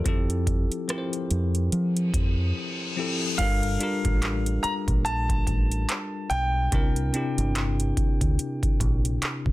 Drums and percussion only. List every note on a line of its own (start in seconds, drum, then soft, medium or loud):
0.06 kick loud
0.06 closed hi-hat medium
0.30 closed hi-hat soft
0.47 kick medium
0.47 closed hi-hat medium
0.72 closed hi-hat medium
0.89 cross-stick loud
0.89 closed hi-hat medium
1.13 closed hi-hat soft
1.31 closed hi-hat medium
1.55 closed hi-hat soft
1.72 closed hi-hat medium
1.97 closed hi-hat soft
2.14 kick medium
2.14 closed hi-hat medium
3.39 kick loud
3.39 closed hi-hat medium
3.39 crash loud
3.63 closed hi-hat medium
3.81 closed hi-hat medium
4.05 kick loud
4.05 closed hi-hat medium
4.22 clap loud
4.22 closed hi-hat medium
4.46 closed hi-hat medium
4.64 closed hi-hat medium
4.88 kick medium
4.88 closed hi-hat medium
5.06 closed hi-hat medium
5.29 kick medium
5.29 closed hi-hat soft
5.47 kick medium
5.47 closed hi-hat medium
5.72 closed hi-hat soft
5.89 clap loud
5.89 closed hi-hat medium
6.31 closed hi-hat medium
6.72 kick loud
6.72 closed hi-hat medium
6.96 closed hi-hat medium
7.14 closed hi-hat medium
7.38 closed hi-hat medium
7.56 clap loud
7.56 closed hi-hat medium
7.80 closed hi-hat soft
7.97 kick loud
7.97 closed hi-hat medium
8.21 kick medium
8.21 closed hi-hat medium
8.39 closed hi-hat medium
8.63 kick medium
8.63 closed hi-hat soft
8.80 kick loud
8.80 closed hi-hat medium
9.05 closed hi-hat soft
9.22 clap loud
9.22 closed hi-hat medium
9.46 kick medium